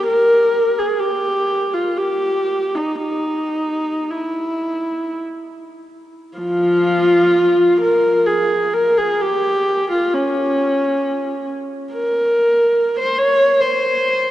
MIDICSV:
0, 0, Header, 1, 2, 480
1, 0, Start_track
1, 0, Key_signature, -4, "minor"
1, 0, Tempo, 937500
1, 44, Time_signature, 3, 2, 24, 8
1, 1006, Tempo, 1077199
1, 2446, Tempo, 1190476
1, 2926, Tempo, 966184
1, 3406, Tempo, 923077
1, 5326, Tempo, 873362
1, 5806, Tempo, 835655
1, 7178, End_track
2, 0, Start_track
2, 0, Title_t, "Viola"
2, 0, Program_c, 0, 41
2, 39, Note_on_c, 0, 70, 71
2, 386, Note_off_c, 0, 70, 0
2, 399, Note_on_c, 0, 68, 55
2, 510, Note_on_c, 0, 67, 60
2, 517, Note_off_c, 0, 68, 0
2, 877, Note_off_c, 0, 67, 0
2, 886, Note_on_c, 0, 65, 49
2, 1009, Note_off_c, 0, 65, 0
2, 1010, Note_on_c, 0, 67, 60
2, 1356, Note_off_c, 0, 67, 0
2, 1356, Note_on_c, 0, 63, 46
2, 1469, Note_off_c, 0, 63, 0
2, 1474, Note_on_c, 0, 63, 46
2, 1950, Note_off_c, 0, 63, 0
2, 1958, Note_on_c, 0, 64, 39
2, 2445, Note_off_c, 0, 64, 0
2, 2923, Note_on_c, 0, 65, 65
2, 2925, Note_on_c, 0, 53, 55
2, 3620, Note_off_c, 0, 65, 0
2, 3621, Note_off_c, 0, 53, 0
2, 3641, Note_on_c, 0, 70, 65
2, 3878, Note_off_c, 0, 70, 0
2, 3879, Note_on_c, 0, 68, 58
2, 4121, Note_off_c, 0, 68, 0
2, 4124, Note_on_c, 0, 70, 67
2, 4244, Note_off_c, 0, 70, 0
2, 4249, Note_on_c, 0, 68, 59
2, 4366, Note_off_c, 0, 68, 0
2, 4371, Note_on_c, 0, 67, 67
2, 4723, Note_off_c, 0, 67, 0
2, 4737, Note_on_c, 0, 65, 56
2, 4847, Note_off_c, 0, 65, 0
2, 4853, Note_on_c, 0, 61, 60
2, 5578, Note_off_c, 0, 61, 0
2, 5812, Note_on_c, 0, 70, 66
2, 6392, Note_off_c, 0, 70, 0
2, 6425, Note_on_c, 0, 72, 61
2, 6532, Note_on_c, 0, 73, 70
2, 6539, Note_off_c, 0, 72, 0
2, 6770, Note_off_c, 0, 73, 0
2, 6776, Note_on_c, 0, 72, 59
2, 7178, Note_off_c, 0, 72, 0
2, 7178, End_track
0, 0, End_of_file